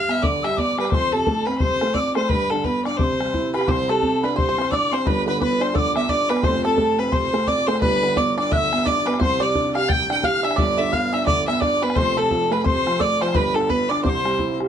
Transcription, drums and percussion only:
0.09 bodhran
0.23 bodhran
0.44 bodhran
0.58 bodhran
0.79 bodhran
0.85 bodhran
0.92 bodhran
1.27 bodhran
1.47 bodhran
1.60 bodhran
1.81 bodhran
1.95 bodhran
2.15 bodhran
2.30 bodhran
2.50 bodhran
2.64 bodhran
2.85 bodhran
2.99 bodhran
3.21 bodhran
3.34 bodhran
3.54 bodhran
3.61 bodhran
3.68 bodhran
4.03 bodhran
4.24 bodhran
4.38 bodhran
4.58 bodhran
4.72 bodhran
4.93 bodhran
5.07 bodhran
5.42 bodhran
5.61 bodhran
5.76 bodhran
5.96 bodhran
6.09 bodhran
6.30 bodhran
6.37 bodhran
6.43 bodhran
6.78 bodhran
6.99 bodhran
7.12 bodhran
7.34 bodhran
7.47 bodhran
7.68 bodhran
7.75 bodhran
7.82 bodhran
8.03 bodhran
8.17 bodhran
8.38 bodhran
8.52 bodhran
8.73 bodhran
8.86 bodhran
9.07 bodhran
9.14 bodhran
9.21 bodhran
9.55 bodhran
9.75 bodhran
9.90 bodhran
10.10 bodhran
10.23 bodhran
10.45 bodhran
10.51 bodhran
10.58 bodhran
10.93 bodhran
11.13 bodhran
11.27 bodhran
11.48 bodhran
11.62 bodhran
11.83 bodhran
11.90 bodhran
11.96 bodhran
12.31 bodhran
12.52 bodhran
12.66 bodhran
12.87 bodhran
13.01 bodhran
13.22 bodhran
13.28 bodhran
13.35 bodhran
13.55 bodhran
13.70 bodhran
13.91 bodhran
14.05 bodhran
14.25 bodhran
14.39 bodhran
14.60 bodhran

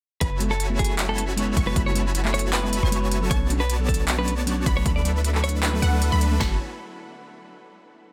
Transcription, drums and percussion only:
0.21 kick, closed hi-hat
0.40 closed hi-hat
0.60 closed hi-hat
0.79 kick, closed hi-hat
0.84 closed hi-hat
0.99 clap, closed hi-hat
1.18 closed hi-hat
1.37 closed hi-hat
1.57 kick, closed hi-hat
1.76 kick, closed hi-hat
1.95 closed hi-hat
2.15 closed hi-hat
2.25 clap
2.34 closed hi-hat
2.39 closed hi-hat
2.53 clap, closed hi-hat
2.73 closed hi-hat
2.92 closed hi-hat
3.12 closed hi-hat
3.31 kick, closed hi-hat
3.50 closed hi-hat
3.70 closed hi-hat
3.89 kick, closed hi-hat
3.94 closed hi-hat
4.08 clap, closed hi-hat
4.28 closed hi-hat
4.47 closed hi-hat
4.66 kick, closed hi-hat
4.86 kick, closed hi-hat
5.05 closed hi-hat
5.25 closed hi-hat
5.35 clap
5.44 closed hi-hat
5.49 closed hi-hat
5.63 clap, closed hi-hat
5.82 closed hi-hat
6.02 closed hi-hat
6.21 closed hi-hat
6.41 kick, snare

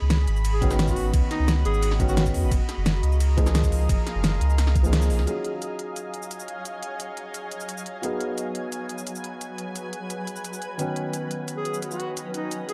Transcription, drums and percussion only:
0.10 snare, closed hi-hat, ride bell, shaker
0.27 closed hi-hat
0.36 shaker
0.45 closed hi-hat, ride bell, shaker
0.62 kick, closed hi-hat, shaker
0.71 snare, shaker
0.79 snare, closed hi-hat, ride bell, shaker
0.88 kick, shaker
0.96 open hi-hat, shaker
1.14 kick, closed hi-hat, ride bell, shaker
1.31 snare, closed hi-hat
1.48 snare, closed hi-hat, ride bell, shaker
1.65 closed hi-hat
1.74 shaker
1.83 closed hi-hat, ride bell, shaker
1.91 snare
2.00 kick, closed hi-hat, shaker
2.09 shaker
2.17 snare, closed hi-hat, ride bell, shaker
2.26 kick, shaker
2.34 open hi-hat, shaker
2.52 kick, closed hi-hat, ride bell, shaker
2.69 snare, closed hi-hat
2.86 snare, closed hi-hat, ride bell, shaker
3.03 closed hi-hat
3.12 shaker
3.20 closed hi-hat, ride bell, shaker
3.38 kick, closed hi-hat, shaker
3.46 snare, shaker
3.55 snare, closed hi-hat, ride bell, shaker
3.64 kick, shaker
3.72 open hi-hat, shaker
3.89 kick, closed hi-hat, ride bell, shaker
4.07 snare, closed hi-hat
4.24 snare, closed hi-hat, ride bell, shaker
4.41 closed hi-hat
4.50 shaker
4.58 snare, closed hi-hat, ride bell, shaker
4.67 snare
4.76 kick, closed hi-hat, shaker
4.84 shaker
4.93 snare, closed hi-hat, ride bell, shaker
5.02 shaker
5.10 open hi-hat, shaker
5.19 snare
5.27 closed hi-hat, shaker
5.45 closed hi-hat
5.62 closed hi-hat, shaker
5.79 closed hi-hat
5.96 closed hi-hat, shaker
6.14 closed hi-hat, shaker
6.22 shaker
6.31 closed hi-hat, shaker
6.40 shaker
6.48 closed hi-hat
6.65 closed hi-hat, shaker
6.83 closed hi-hat
7.00 closed hi-hat, shaker
7.17 closed hi-hat
7.34 closed hi-hat, shaker
7.51 closed hi-hat, shaker
7.60 shaker
7.69 closed hi-hat, shaker
7.78 shaker
7.86 closed hi-hat
8.03 closed hi-hat, shaker
8.21 closed hi-hat
8.38 closed hi-hat, shaker
8.55 closed hi-hat
8.72 closed hi-hat, shaker
8.89 closed hi-hat, shaker
8.98 shaker
9.07 closed hi-hat, shaker
9.15 shaker
9.24 closed hi-hat
9.41 closed hi-hat, shaker
9.58 closed hi-hat
9.76 closed hi-hat, shaker
9.93 closed hi-hat
10.10 closed hi-hat, shaker
10.27 closed hi-hat, shaker
10.36 shaker
10.45 closed hi-hat, shaker
10.53 shaker
10.62 closed hi-hat, shaker
10.79 closed hi-hat, shaker
10.96 closed hi-hat
11.14 closed hi-hat, shaker
11.31 closed hi-hat
11.48 closed hi-hat, shaker
11.65 closed hi-hat, shaker
11.74 shaker
11.82 closed hi-hat, shaker
11.91 shaker
12.00 closed hi-hat
12.17 closed hi-hat, shaker
12.34 closed hi-hat
12.51 closed hi-hat, shaker
12.69 closed hi-hat

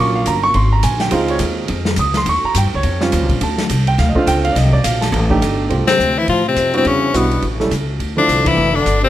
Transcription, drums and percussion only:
0.26 hi-hat pedal, ride
0.54 ride
0.83 hi-hat pedal, ride
1.00 snare, ride
1.11 ride
1.28 ride
1.39 hi-hat pedal, ride
1.68 ride
1.85 snare
1.96 hi-hat pedal, ride
2.14 snare, ride
2.26 ride
2.55 hi-hat pedal, ride
2.83 ride
3.01 snare
3.12 hi-hat pedal, ride
3.29 kick, ride
3.41 ride
3.58 snare, ride
3.69 hi-hat pedal, ride
3.87 ride
3.99 snare, ride
4.15 kick
4.27 hi-hat pedal, ride
4.45 ride
4.56 snare, ride
4.73 kick
4.84 hi-hat pedal, ride
5.02 snare, ride
5.14 ride
5.30 kick
5.42 hi-hat pedal, ride
5.70 ride
5.87 snare, ride
5.99 hi-hat pedal
6.28 ride
6.56 hi-hat pedal, ride
6.74 ride
6.85 ride
7.14 hi-hat pedal, ride
7.31 ride
7.42 ride
7.60 snare
7.71 hi-hat pedal, ride
8.00 ride
8.29 hi-hat pedal, ride
8.46 kick, ride
8.86 hi-hat pedal, ride

